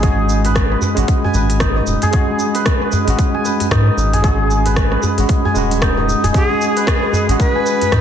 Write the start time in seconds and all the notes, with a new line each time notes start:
Already playing: G#1 C#4 D#4 F#4 B4 D#5 G#5
0.00 G#3 C#4 G#4, kick, open hi-hat, shaker
0.05 F#4
0.29 shaker
0.44 B4, open hi-hat, djembe tone, shaker
0.56 kick, cross-stick, open hi-hat, shaker
0.72 B4
0.81 djembe slap, djembe bass, shaker
0.95 G#1 G#3 C#4 F#4, open hi-hat, shaker
1.08 kick, open hi-hat, shaker
1.24 G#5, djembe bass
1.34 G#1 B4, djembe tone, shaker
1.50 open hi-hat, shaker
1.60 D#4, kick, cross-stick, open hi-hat, shaker
1.76 D#5, djembe tone
1.87 D#1, djembe tone, shaker
2.02 G#4, open hi-hat, djembe slap, djembe bass, shaker
2.11 G#3 C#4 G#4, kick, open hi-hat, shaker
2.15 F#4
2.39 shaker
2.55 B4, open hi-hat, shaker
2.66 kick, cross-stick, open hi-hat, shaker
2.82 B4
2.92 djembe slap, djembe bass, shaker
3.05 G#1 G#3 C#4, open hi-hat, shaker
3.09 F#4
3.19 kick, open hi-hat, shaker
3.34 G#5
3.45 B4, djembe tone, shaker
3.60 open hi-hat, djembe tone, shaker
3.71 G#2 D#4, kick, cross-stick, open hi-hat, shaker
3.87 D#5
3.97 G#1, djembe slap, djembe tone, shaker
4.13 G#4, open hi-hat, djembe bass, shaker
4.22 G#3 C#4 G#4, kick, open hi-hat, shaker
4.26 F#4
4.51 shaker
4.66 B4, open hi-hat, djembe tone, shaker
4.76 kick, cross-stick, open hi-hat, shaker
4.92 B4, cross-stick
5.03 djembe slap, djembe bass, shaker
5.18 G#1 G#3 C#4 F#4, open hi-hat, djembe tone, shaker
5.29 kick, open hi-hat, shaker
5.45 G#5, djembe bass
5.54 D#1 G#3 C#4 B4, djembe tone, shaker
5.58 F#4
5.71 open hi-hat, shaker
5.82 D#4, kick, cross-stick, open hi-hat, shaker
5.97 D#5, djembe tone
6.09 djembe tone, shaker
6.23 D#1 G#4, open hi-hat, djembe slap, djembe bass, shaker
6.33 G#3 C#4 G4 G#4, kick, open hi-hat, shaker
6.37 F#4
6.49 G#4
6.62 shaker
6.76 B4, open hi-hat, shaker
6.87 kick, cross-stick, open hi-hat, shaker
7.03 B4
7.13 djembe slap, djembe bass, shaker
7.27 G#1 G#3 C#4, open hi-hat, shaker
7.31 F#4
7.40 B4, kick, open hi-hat, shaker
7.55 G#5
7.66 B4, shaker
7.82 open hi-hat, djembe tone, shaker
7.92 G#2 D#4, kick, cross-stick, open hi-hat, shaker